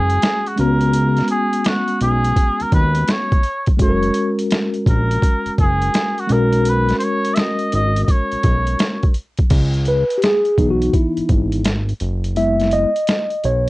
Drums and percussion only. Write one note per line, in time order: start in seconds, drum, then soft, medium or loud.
0.09 closed hi-hat medium
0.22 snare loud
0.22 closed hi-hat medium
0.46 closed hi-hat soft
0.58 closed hi-hat medium
0.81 closed hi-hat soft
0.94 closed hi-hat medium
1.17 snare soft
1.17 closed hi-hat soft
1.28 closed hi-hat medium
1.53 closed hi-hat medium
1.65 snare loud
1.65 closed hi-hat medium
1.88 closed hi-hat soft
2.01 closed hi-hat medium
2.25 closed hi-hat medium
2.36 kick medium
2.36 closed hi-hat medium
2.60 closed hi-hat soft
2.72 kick medium
2.72 closed hi-hat medium
2.95 closed hi-hat medium
3.08 snare loud
3.08 closed hi-hat loud
3.32 kick loud
3.32 closed hi-hat soft
3.44 closed hi-hat medium
3.67 kick loud
3.67 closed hi-hat soft
3.79 kick loud
3.79 closed hi-hat loud
4.03 closed hi-hat soft
4.14 closed hi-hat medium
4.39 closed hi-hat medium
4.51 snare loud
4.51 closed hi-hat medium
4.74 closed hi-hat soft
4.86 kick medium
4.86 closed hi-hat medium
5.11 closed hi-hat medium
5.22 kick medium
5.22 closed hi-hat medium
5.46 closed hi-hat soft
5.58 kick medium
5.58 closed hi-hat medium
5.82 closed hi-hat medium
5.94 snare loud
5.94 closed hi-hat medium
6.18 closed hi-hat soft
6.29 closed hi-hat medium
6.52 closed hi-hat medium
6.65 closed hi-hat medium
6.88 snare soft
6.88 closed hi-hat soft
7.00 closed hi-hat medium
7.24 closed hi-hat medium
7.36 snare loud
7.36 closed hi-hat medium
7.59 closed hi-hat soft
7.72 closed hi-hat medium
7.96 closed hi-hat medium
8.08 kick medium
8.08 closed hi-hat medium
8.31 closed hi-hat soft
8.43 kick medium
8.43 closed hi-hat medium
8.67 closed hi-hat medium
8.79 snare loud
8.79 closed hi-hat loud
9.03 kick medium
9.03 closed hi-hat soft
9.14 closed hi-hat medium
9.37 kick loud
9.37 closed hi-hat soft
9.50 kick loud
9.50 closed hi-hat medium
9.50 crash medium
9.73 closed hi-hat soft
9.85 closed hi-hat medium
10.10 closed hi-hat medium
10.22 snare loud
10.22 closed hi-hat medium
10.45 closed hi-hat soft
10.57 kick medium
10.57 closed hi-hat medium
10.82 closed hi-hat medium
10.93 kick medium
10.93 closed hi-hat medium
11.17 closed hi-hat soft
11.29 kick medium
11.29 closed hi-hat medium
11.52 closed hi-hat medium
11.65 snare loud
11.65 closed hi-hat loud
11.89 closed hi-hat soft
12.00 closed hi-hat medium
12.24 closed hi-hat soft
12.36 closed hi-hat loud
12.60 snare soft
12.60 closed hi-hat soft
12.71 closed hi-hat medium
12.96 closed hi-hat medium
13.07 snare loud
13.07 closed hi-hat medium
13.30 closed hi-hat soft
13.44 closed hi-hat medium